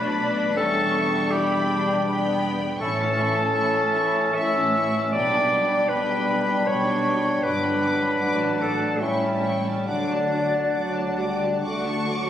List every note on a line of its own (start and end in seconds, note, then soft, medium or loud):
0.00 0.53 B1 medium
0.00 0.53 B2 medium
0.00 0.53 A3 medium
0.00 0.18 D4 medium
0.00 2.49 D4 medium
0.00 2.65 D4 medium
0.00 0.56 B4 medium
0.00 0.57 D5 medium
0.00 0.25 A5 medium
0.00 0.56 B5 medium
0.00 0.57 B5 medium
0.20 0.56 D4 medium
0.56 2.76 E1 medium
0.56 2.77 E2 medium
0.56 2.65 G3 medium
0.56 0.94 C#4 medium
0.56 1.32 A4 medium
0.56 1.31 E5 medium
0.56 2.77 G5 medium
0.56 1.34 A5 medium
0.56 1.32 C#6 medium
0.94 1.32 B3 medium
1.31 1.69 E4 medium
1.31 2.43 G4 medium
1.31 2.44 G5 medium
1.31 2.06 G5 medium
1.31 2.06 B5 medium
1.70 2.06 D4 medium
2.06 2.79 B3 medium
2.06 2.80 G5 medium
2.06 2.79 B5 medium
2.78 3.46 A1 medium
2.78 3.47 A2 medium
2.78 5.18 C#4 medium
2.78 2.98 E4 medium
2.78 4.36 A4 loud
2.78 4.31 A5 medium
2.78 2.96 C#6 medium
2.82 4.33 E3 medium
2.82 4.33 C#4 medium
2.82 5.11 E5 medium
2.82 2.99 E5 medium
2.97 3.18 C#4 medium
2.97 3.17 A5 medium
3.01 3.19 C#5 medium
3.18 3.37 E4 medium
3.18 3.37 E5 medium
3.18 3.37 C#6 medium
3.35 3.56 C#4 soft
3.35 3.55 A5 medium
3.40 3.57 C#5 medium
3.54 4.26 A1 medium
3.54 4.27 A2 medium
3.54 3.74 E4 medium
3.54 3.73 C#6 medium
3.58 3.75 E5 medium
3.75 3.96 C#4 medium
3.75 3.96 C#5 medium
3.75 3.95 A5 medium
3.95 4.16 E4 medium
3.95 4.16 E5 medium
3.95 4.16 C#6 medium
4.16 4.37 C#4 medium
4.16 4.36 C#5 medium
4.16 4.36 A5 soft
4.34 5.05 A1 medium
4.34 5.05 A2 medium
4.34 5.11 E3 medium
4.34 5.11 C#4 medium
4.34 5.12 E5 medium
4.34 4.55 E5 medium
4.34 4.54 C#6 medium
4.34 5.15 E6 medium
4.38 4.56 E4 medium
4.55 4.76 C#4 medium
4.55 4.76 C#5 medium
4.55 4.75 A5 medium
4.76 4.96 E4 medium
4.76 4.95 E5 medium
4.76 4.95 C#6 medium
4.96 5.15 C#4 medium
4.96 5.15 C#5 medium
4.96 5.15 A5 medium
5.13 5.81 B1 medium
5.13 5.82 B2 medium
5.13 5.87 G3 medium
5.13 5.33 B3 medium
5.13 5.88 D4 medium
5.13 9.02 D4 medium
5.13 5.90 D5 loud
5.13 5.32 G5 medium
5.13 7.88 G5 medium
5.13 5.33 B5 medium
5.13 5.92 D6 medium
5.33 5.53 D4 medium
5.33 5.53 G5 medium
5.33 5.52 B5 medium
5.51 5.72 B3 medium
5.51 5.70 G5 medium
5.51 5.71 B5 medium
5.70 5.91 D4 soft
5.70 5.90 G5 medium
5.70 5.90 B5 medium
5.88 6.57 B1 medium
5.88 6.58 B2 medium
5.88 7.39 G3 medium
5.88 6.09 B3 medium
5.88 7.39 D4 medium
5.88 6.68 B4 medium
5.88 6.08 G5 medium
5.88 6.07 B5 medium
5.88 6.69 B5 medium
6.07 6.29 D4 medium
6.07 6.27 G5 soft
6.07 6.28 B5 soft
6.28 6.49 B3 medium
6.28 6.49 G5 soft
6.28 6.47 B5 medium
6.47 6.68 D4 soft
6.47 6.67 G5 soft
6.47 6.67 B5 medium
6.65 7.34 B1 medium
6.65 7.34 B2 medium
6.65 6.86 B3 medium
6.65 7.44 C#5 medium
6.65 6.86 G5 soft
6.65 6.84 B5 medium
6.65 7.42 C#6 loud
6.85 7.06 D4 medium
6.85 7.05 G5 soft
6.85 7.06 B5 medium
7.04 7.26 B3 medium
7.04 7.25 G5 medium
7.04 7.24 B5 medium
7.24 7.44 D4 medium
7.24 7.43 G5 soft
7.24 7.44 B5 medium
7.43 8.11 G1 medium
7.43 8.11 G2 medium
7.43 8.19 F#3 medium
7.43 7.62 B3 medium
7.43 8.19 D4 medium
7.43 8.63 B4 medium
7.43 7.61 F#5 soft
7.43 8.61 B5 medium
7.43 7.61 D6 medium
7.63 7.83 D4 soft
7.63 7.81 G5 soft
7.63 7.82 B5 soft
7.81 8.02 B3 medium
7.81 8.00 F#5 soft
7.81 8.01 D6 soft
8.00 8.21 D4 soft
8.00 8.20 G5 soft
8.00 8.20 B5 soft
8.17 8.91 A1 medium
8.17 8.92 A2 medium
8.17 9.00 F#3 medium
8.17 8.37 F#5 soft
8.17 9.03 F#5 medium
8.17 8.38 D6 medium
8.22 9.01 D4 medium
8.22 8.41 F#4 medium
8.38 8.59 D5 soft
8.38 8.60 A5 soft
8.43 8.62 D4 soft
8.57 8.79 F#5 soft
8.57 9.02 A5 medium
8.57 8.81 D6 soft
8.62 8.82 F#4 medium
8.62 9.04 A4 medium
8.79 9.03 D4 soft
8.79 9.01 D5 soft
8.79 9.01 A5 soft
9.00 9.77 A1 medium
9.00 9.78 A2 medium
9.00 9.86 G3 soft
9.00 9.87 C#4 soft
9.00 9.56 C#4 soft
9.00 9.57 E4 medium
9.00 9.22 E4 medium
9.00 9.57 E5 medium
9.00 9.20 G5 soft
9.00 9.87 G5 medium
9.00 9.21 C#6 soft
9.21 9.45 C#4 soft
9.21 9.43 E5 soft
9.21 9.44 A5 soft
9.42 9.64 G5 soft
9.42 9.65 C#6 soft
9.46 9.67 E4 soft
9.64 9.87 E5 soft
9.64 9.88 A5 soft
9.69 9.89 C#4 soft
9.85 10.63 D2 medium
9.85 10.65 D3 medium
9.85 10.65 F#3 medium
9.85 10.63 D4 medium
9.85 11.61 D4 medium
9.85 12.10 D4 medium
9.85 10.09 F#4 soft
9.85 11.61 D5 medium
9.85 10.07 F#5 soft
9.85 12.10 F#5 medium
9.85 10.08 D6 soft
10.06 10.29 D5 soft
10.11 10.32 D4 soft
10.11 10.32 A5 soft
10.30 10.53 F#4 soft
10.30 10.52 F#5 soft
10.30 10.52 D6 soft
10.52 10.75 D4 soft
10.52 10.74 D5 soft
10.52 10.75 A5 soft
10.72 11.53 D2 medium
10.72 11.54 D3 soft
10.72 11.16 F#3 medium
10.72 10.94 F#5 soft
10.72 10.93 D6 soft
10.76 10.96 F#4 soft
10.93 11.17 D5 soft
10.93 11.19 A5 soft
10.99 11.20 D4 soft
11.17 11.64 G3 medium
11.17 11.43 F#4 soft
11.17 11.41 F#5 soft
11.17 11.42 D6 soft
11.38 11.62 D5 soft
11.38 11.64 A5 soft
11.43 11.65 D4 soft
11.63 12.30 D2 soft
11.63 12.30 D3 medium
11.63 11.85 F#4 soft
11.63 11.84 F#5 soft
11.63 12.30 C#6 medium
11.63 11.84 D6 soft
11.67 12.09 A3 medium
11.83 12.07 D4 soft
11.83 12.06 D5 soft
11.83 12.06 A5 soft
12.05 12.27 F#4 soft
12.05 12.27 F#5 soft
12.05 12.26 D6 soft
12.10 12.30 F#3 soft
12.26 12.30 D4 soft
12.26 12.30 D5 soft
12.26 12.30 A5 soft